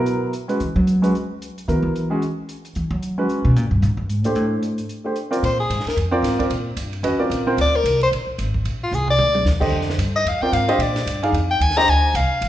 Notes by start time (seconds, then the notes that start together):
Already playing: F#3 B3 E4 A#4
0.06 closed hi-hat
0.33 closed hi-hat
0.48 G#3 C#4 F#4 B4, closed hi-hat
0.60 E3, closed hi-hat
0.76 F#3
0.87 closed hi-hat
1.02 G#3 C#4 F#4 B4, closed hi-hat
1.15 closed hi-hat
1.42 closed hi-hat
1.58 closed hi-hat
1.68 D#3 F#3 B3 E4 A#4, closed hi-hat
1.83 E3
1.96 closed hi-hat
2.10 G#3 C#4 F#4 G#4
2.22 closed hi-hat
2.49 closed hi-hat
2.65 closed hi-hat
2.75 E3, closed hi-hat
2.91 F#3
3.03 closed hi-hat
3.18 G#3 C#4 F#4 B4
3.29 closed hi-hat
3.45 B2
3.56 A#2, closed hi-hat
3.71 G2
3.82 G#2, closed hi-hat
3.97 F#2
4.08 G#2, closed hi-hat
4.24 A#2 A3 D4 G4 C5, closed hi-hat
4.35 A2, closed hi-hat
4.63 closed hi-hat
4.78 closed hi-hat
4.89 closed hi-hat
5.04 A3 D4 G4 C5
5.16 closed hi-hat
5.31 C4 F4 A#4 D5, closed hi-hat
5.43 A#2 C5, ride
5.60 G#4
5.70 G#2, hi-hat pedal, ride
5.80 snare
5.86 A#4, muted upright bass stroke, snare, ride
5.96 F2, ride
6.11 C4 F4 A#4 D5
6.22 G#2, snare, hi-hat pedal, ride
6.39 C4 F4 A#4 D5, kick, ride
6.50 A#2, ride
6.77 G2, hi-hat pedal, ride
6.93 ride
7.03 F2 C#4 F#4 B4 D#5, ride
7.18 C4 F4 A#4 D5, muted upright bass stroke
7.30 A#1, hi-hat pedal, ride
7.47 C4 F4 A#4 C5
7.57 D2 D5, ride
7.76 A#4
7.84 C2, hi-hat pedal, ride
8.01 C5, ride
8.11 A#1, ride
8.27 muted upright bass stroke
8.38 G#1, hi-hat pedal, ride
8.54 kick
8.65 A#1, ride
8.84 F4
8.91 C2 G#4, floor tom, hi-hat pedal
9.08 D5, floor tom
9.18 D2, floor tom
9.35 mid tom
9.45 D#2, snare, hi-hat pedal
9.60 D3 G4 C5 D#5, kick, crash
9.72 F2
9.81 snare
9.90 snare
9.98 G2, hi-hat pedal, ride
10.16 D#5
10.25 F2 F5, ride
10.41 C4 F4 A#4 D5 G5, muted upright bass stroke
10.52 G#2 F5, hi-hat pedal, ride
10.68 D4 G4 C5 D#5, ride
10.78 A#2 D5, ride
10.96 snare, ride
11.06 G2, hi-hat pedal, ride
11.23 D#4 G#4 D5 F5, ride
11.32 F2, ride
11.51 G5
11.60 D#2 G#5, hi-hat pedal, ride
11.70 snare
11.77 D4 G4 C5 D#5 A#5, snare, ride
11.88 D2 G#5, ride
12.14 C2 F5, hi-hat pedal, ride
12.41 G#1, ride